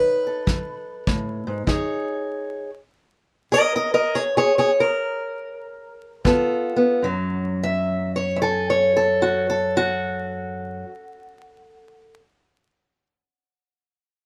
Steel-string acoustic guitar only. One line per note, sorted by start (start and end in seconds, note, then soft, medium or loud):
0.00 0.43 F#3 medium
0.00 1.67 D#4 soft
0.00 1.68 B4 medium
0.27 1.65 A4 soft
0.47 1.03 F#3 medium
1.07 1.47 A2 medium
1.47 1.66 G#2 medium
1.67 2.19 F#2 medium
1.67 2.70 D#4 soft
1.67 2.70 G#4 medium
1.67 2.70 C#5 medium
3.52 3.73 A#4 medium
3.52 3.74 D#5 medium
3.75 3.93 A#4 medium
3.75 3.93 D#5 medium
3.94 4.16 A#4 medium
3.94 4.15 D#5 medium
4.15 4.22 G#4 medium
4.15 4.37 C#5 medium
4.37 4.51 G#4 medium
4.37 4.57 C#5 medium
4.58 4.70 G#4 medium
4.58 4.81 C#5 medium
4.80 6.24 A#4 medium
6.25 6.97 G2 medium
6.25 6.75 B3 medium
6.25 7.00 F4 medium
6.25 7.01 A4 medium
6.76 7.04 B3 medium
7.02 10.83 F#2 medium
7.02 10.84 F#3 medium
7.63 8.16 E5 medium
8.16 8.42 C#5 medium
8.36 8.41 E5 medium
8.42 8.95 A4 medium
8.42 8.69 G#5 medium
8.70 9.86 C#5 medium
8.96 9.48 A4 medium
9.22 9.46 F#4 medium
9.50 12.16 A4 medium
9.77 12.01 F#4 loud